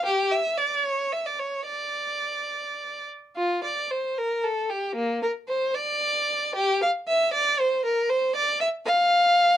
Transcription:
\new Staff \with { instrumentName = "Violin" } { \time 6/8 \key d \minor \tempo 4. = 76 g'8 e''8 d''8 cis''8 e''16 d''16 cis''8 | d''2~ d''8 r8 | f'8 d''8 c''8 bes'8 a'8 g'8 | bes8 bes'8 c''8 d''4. |
g'8 f''8 e''8 d''8 c''8 bes'8 | c''8 d''8 e''8 f''4. | }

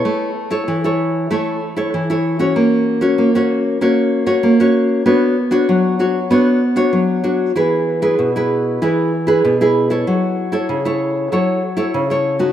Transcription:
\new Staff \with { instrumentName = "Nylon-string guitar" } { \time 4/4 \key a \major \tempo 4 = 96 << { <e' a' cis''>8 r16 <e' a' cis''>8 <e' a' cis''>8. <e' a' cis''>8 r16 <e' a' cis''>8 <e' a' cis''>8 <cis' fis' cis''>16~ | <cis' fis' cis''>8. <cis' fis' cis''>8 <cis' fis' cis''>8. <cis' fis' cis''>8. <cis' fis' cis''>8 <cis' fis' cis''>8. | <d' fis' cis''>8 r16 <d' fis' cis''>8. <d' fis' cis''>16 r16 <d' fis' cis''>8 r16 <d' fis' cis''>8. <d' fis' cis''>8 | <e' gis' b'>8. <e' gis' b'>8 <e' gis' b'>8. <e' gis' b'>8 r16 <e' gis' b'>8 <e' gis' b'>8 <e' a' cis''>16~ |
<e' a' cis''>8. <e' a' cis''>8 <e' a' cis''>8. <e' a' cis''>8 r16 <e' a' cis''>8 <e' a' cis''>8 <a dis' fis'>16 | } \\ { a4 e4 a4 e4 | ais4 ais4 ais4 ais4 | b4 fis4 b4 fis4 | e4 b,4 e4 b,4 |
fis4 cis4 fis4 cis4 | } >> }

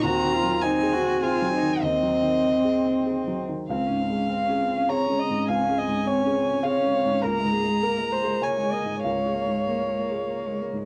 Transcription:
<<
  \new Staff \with { instrumentName = "Violin" } { \time 3/4 \key des \major \tempo 4 = 100 bes''4 aes''4 aes''4 | ees''2~ ees''8 r8 | f''2 bes''4 | aes''2 f''4 |
bes''2 aes''4 | f''2~ f''8 r8 | }
  \new Staff \with { instrumentName = "Viola" } { \time 3/4 \key des \major c'4 c'4 c'4 | c'2~ c'8 r8 | r4 f''4 des''8 ees''8 | f''8 ees''8 des''4 des''4 |
bes'8 aes'8 bes'8 c''8 des''8 ees''8 | des''2~ des''8 r8 | }
  \new Staff \with { instrumentName = "Cello" } { \time 3/4 \key des \major ges'8 f'8 ees'8 ges'8 f'8 ees'8 | c'2~ c'8 r8 | c'16 des'16 c'16 des'16 c'16 des'16 c'16 des'16 c'16 des'16 c'16 des'16 | c'16 des'16 c'16 des'16 c'16 des'16 c'16 des'16 c'16 des'16 c'16 des'16 |
bes16 aes16 bes16 aes16 bes16 aes16 bes16 aes16 bes16 aes16 bes16 aes16 | bes16 aes16 bes16 aes16 bes16 aes16 bes16 aes16 bes16 aes16 bes16 aes16 | }
  \new Staff \with { instrumentName = "Felt piano" } { \time 3/4 \key des \major r2. | r2. | f''2 bes''4 | aes''2 f''4 |
bes''2 aes''4 | f''2~ f''8 r8 | }
  \new Staff \with { instrumentName = "Felt piano" } { \clef bass \time 3/4 \key des \major \tuplet 3/2 { ees,8 ees8 ges8 c'8 aes'8 c'8 aes'8 ges8 ees8 } | \tuplet 3/2 { ees,8 ges8 ees8 c'8 aes'8 c'8 aes'8 ges8 ees8 } | \tuplet 3/2 { des,8 aes,8 aes8 c'8 aes'8 c'8 aes'8 aes8 aes,8 } | \tuplet 3/2 { des,8 aes8 aes,8 c'8 aes'8 c'8 aes'8 aes8 aes,8 } |
\tuplet 3/2 { des,8 aes,8 aes8 bes8 bes'8 aes'8 bes'8 aes8 aes,8 } | \tuplet 3/2 { des,8 aes8 aes,8 bes8 bes'8 aes'8 bes'8 aes8 aes,8 } | }
>>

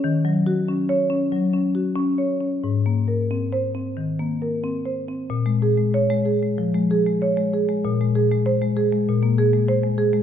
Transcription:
<<
  \new Staff \with { instrumentName = "Marimba" } { \time 4/4 \key bes \minor \tempo 4 = 94 r4 \tuplet 3/2 { r8 des''4 } r2 | r4 \tuplet 3/2 { r8 c''4 } r2 | r4 des''8 r2 r8 | r4 c''8 r2 r8 | }
  \new Staff \with { instrumentName = "Marimba" } { \time 4/4 \key bes \minor \tuplet 3/2 { ees8 ges8 ges'8 des'4 des'8 ges8 des'8 ges'8 des'8 des''8 des'8 } | \tuplet 3/2 { aes,8 bes8 bes'8 c'4 c'8 ees8 bes8 bes'8 c'8 c''8 c'8 } | bes,16 aes16 aes'16 aes8 aes16 aes'16 aes16 f16 aes16 aes'16 aes16 des''16 aes16 aes'16 aes16 | bes,16 aes16 aes'16 aes8 aes16 aes'16 aes16 bes,16 bes16 aes'16 aes16 c''16 aes16 aes'16 aes16 | }
>>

